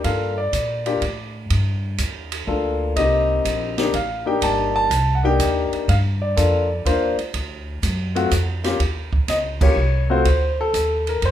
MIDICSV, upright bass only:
0, 0, Header, 1, 3, 480
1, 0, Start_track
1, 0, Key_signature, -2, "minor"
1, 0, Tempo, 485830
1, 45, Time_signature, 3, 2, 24, 8
1, 11174, End_track
2, 0, Start_track
2, 0, Title_t, "Upright bass"
2, 0, Program_c, 0, 32
2, 44, Note_on_c, 0, 43, 80
2, 511, Note_off_c, 0, 43, 0
2, 519, Note_on_c, 0, 46, 83
2, 989, Note_off_c, 0, 46, 0
2, 1002, Note_on_c, 0, 45, 84
2, 1471, Note_off_c, 0, 45, 0
2, 1483, Note_on_c, 0, 43, 79
2, 1952, Note_off_c, 0, 43, 0
2, 1962, Note_on_c, 0, 39, 81
2, 2432, Note_off_c, 0, 39, 0
2, 2442, Note_on_c, 0, 38, 85
2, 2912, Note_off_c, 0, 38, 0
2, 2925, Note_on_c, 0, 36, 80
2, 3394, Note_off_c, 0, 36, 0
2, 3404, Note_on_c, 0, 34, 79
2, 3874, Note_off_c, 0, 34, 0
2, 3886, Note_on_c, 0, 33, 78
2, 4355, Note_off_c, 0, 33, 0
2, 4365, Note_on_c, 0, 31, 81
2, 4834, Note_off_c, 0, 31, 0
2, 4843, Note_on_c, 0, 36, 86
2, 5313, Note_off_c, 0, 36, 0
2, 5327, Note_on_c, 0, 39, 86
2, 5631, Note_off_c, 0, 39, 0
2, 5810, Note_on_c, 0, 43, 87
2, 6277, Note_off_c, 0, 43, 0
2, 6293, Note_on_c, 0, 41, 78
2, 6759, Note_off_c, 0, 41, 0
2, 6771, Note_on_c, 0, 39, 85
2, 7073, Note_off_c, 0, 39, 0
2, 7250, Note_on_c, 0, 38, 78
2, 7717, Note_off_c, 0, 38, 0
2, 7731, Note_on_c, 0, 42, 87
2, 8198, Note_off_c, 0, 42, 0
2, 8212, Note_on_c, 0, 41, 89
2, 8677, Note_off_c, 0, 41, 0
2, 8689, Note_on_c, 0, 39, 79
2, 9156, Note_off_c, 0, 39, 0
2, 9170, Note_on_c, 0, 37, 82
2, 9636, Note_off_c, 0, 37, 0
2, 9641, Note_on_c, 0, 36, 82
2, 10111, Note_off_c, 0, 36, 0
2, 10128, Note_on_c, 0, 38, 83
2, 10595, Note_off_c, 0, 38, 0
2, 10605, Note_on_c, 0, 39, 83
2, 11073, Note_off_c, 0, 39, 0
2, 11087, Note_on_c, 0, 41, 83
2, 11174, Note_off_c, 0, 41, 0
2, 11174, End_track
3, 0, Start_track
3, 0, Title_t, "Muted upright bass strokes"
3, 5643, Note_on_c, 9, 29, 38
3, 5742, Note_off_c, 9, 29, 0
3, 7090, Note_on_c, 9, 29, 36
3, 7189, Note_off_c, 9, 29, 0
3, 11174, End_track
0, 0, End_of_file